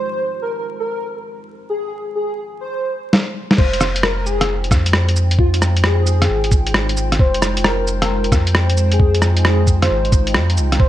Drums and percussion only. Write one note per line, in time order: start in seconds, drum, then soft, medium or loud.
3.13 snare loud
3.51 snare medium
3.58 kick loud
3.58 crash loud
3.73 closed hi-hat soft
3.81 cross-stick medium
3.81 cabasa medium
3.96 closed hi-hat medium
4.03 cross-stick loud
4.26 cabasa medium
4.41 cross-stick medium
4.41 closed hi-hat medium
4.64 closed hi-hat soft
4.71 kick loud
4.71 cross-stick medium
4.71 cabasa medium
4.86 closed hi-hat medium
4.93 cross-stick loud
5.09 closed hi-hat soft
5.16 cabasa medium
5.31 closed hi-hat medium
5.39 kick loud
5.54 closed hi-hat soft
5.62 cross-stick medium
5.62 cabasa medium
5.77 closed hi-hat medium
5.84 cross-stick loud
6.07 cabasa medium
6.22 cross-stick medium
6.22 closed hi-hat medium
6.44 closed hi-hat soft
6.52 kick loud
6.52 cabasa medium
6.67 closed hi-hat medium
6.74 cross-stick loud
6.89 closed hi-hat soft
6.97 cabasa medium
7.12 cross-stick medium
7.12 closed hi-hat medium
7.19 kick loud
7.34 closed hi-hat soft
7.42 cross-stick medium
7.42 cabasa medium
7.57 closed hi-hat medium
7.64 cross-stick loud
7.87 cabasa medium
8.02 cross-stick medium
8.02 closed hi-hat medium
8.24 closed hi-hat soft
8.32 kick loud
8.32 cross-stick medium
8.32 cabasa medium
8.47 closed hi-hat medium
8.55 cross-stick loud
8.70 closed hi-hat soft
8.77 cabasa medium
8.92 closed hi-hat medium
9.00 kick loud
9.15 closed hi-hat soft
9.22 cross-stick medium
9.22 cabasa medium
9.37 closed hi-hat medium
9.45 cross-stick loud
9.67 kick medium
9.67 cabasa medium
9.82 cross-stick medium
9.82 closed hi-hat medium
10.05 closed hi-hat soft
10.12 kick loud
10.12 cabasa medium
10.27 closed hi-hat medium
10.34 cross-stick loud
10.50 closed hi-hat soft
10.57 cabasa medium
10.72 cross-stick soft
10.72 closed hi-hat medium
10.80 kick loud